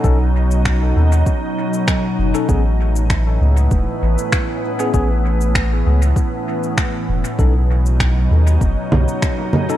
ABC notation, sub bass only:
X:1
M:4/4
L:1/8
Q:"Swing 16ths" 1/4=98
K:Bmix
V:1 name="Sub bass" clef=bass
B,,,3 D,, z3 F,,, | A,,,3 C,, E,,, A,,, z2 | A,,,3 C,, z3 E,,, | B,,,3 D,, F,,, B,,, z2 |]